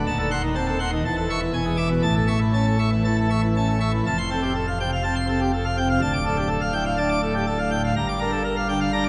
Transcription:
0.06 D#1 D#2 A5
0.19 A4
0.31 F#5 C6
0.43 D#3
0.55 C4 A5
0.68 A4
0.80 F#5 C6
0.93 D#3
1.05 E1 E2 A5
1.18 A4
1.30 E5 C#6
1.41 E3
1.53 E1 E2 G#5
1.65 G#4
1.77 E5 D6
1.90 B2
2.02 A1 A2 A5
2.15 A4
2.27 E5 C#6
2.40 E3
2.53 C#4 A5
2.66 A4
2.78 E5 C#6
2.92 E3
3.05 E3 A5
3.18 A4
3.30 E5 C#6
3.43 E3
3.56 C#4 A5
3.68 A4
3.80 E5 C#6
3.93 E3
4.06 F1 F2 A5
4.18 C6
4.31 C4 A4
4.42 G4
4.55 A4
4.67 F5
4.80 C3 G5
4.93 F5
5.04 C4 A5
5.16 C6
5.29 C3 A4
5.41 G4
5.54 A4
5.65 F5
5.77 C3 G5
5.90 F5
6.02 D1 D2 A5
6.13 D6
6.25 D4 A4
6.37 G4
6.48 A4
6.61 F5
6.73 A2 G5
6.86 F5
6.97 D4 A5
7.10 D6
7.22 A2 A4
7.34 G4
7.47 A4
7.59 F5
7.71 A2 G5
7.85 F5
7.96 G1 G2 A#5
8.09 D6
8.20 D4 A#4
8.32 A4
8.44 A#4
8.56 F5
8.69 D3 G5
8.81 F5
8.93 D4 A#5
9.04 D6

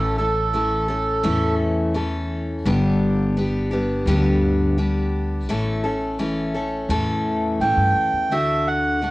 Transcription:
Already playing: A1 A2 E3 A3 C#4 A4
0.18 A3 C#4 A4
0.54 E3 A3 C#4 A4
0.88 A3 C#4 A4
1.23 E2 A2 E3 A3 C#4 A4
1.94 E3 A3 C#4 A4
2.65 G1 G2 D3 G3 B3 D4 G4
3.37 G3 B3 D4 G4
3.71 G3 B3 D4 G4
4.06 D2 G2 D3 G3 B3 D4 G4
4.78 G3 B3 D4 G4
5.47 A1 A2 E3 A3 C#4 A4
5.84 A3 C#4 A4
6.19 E3 A3 C#4 A4
6.54 A3 C#4 A4
6.89 E2 A2 E3 A3 C#4 A4
7.60 A2 E3 A3 C#4 A4 G5
7.77 G2
7.95 F#2
8.12 E2
8.30 D2 D3 A3 D4 F#4 E5
8.67 F#5
9.02 D3 A3 D4 F#4

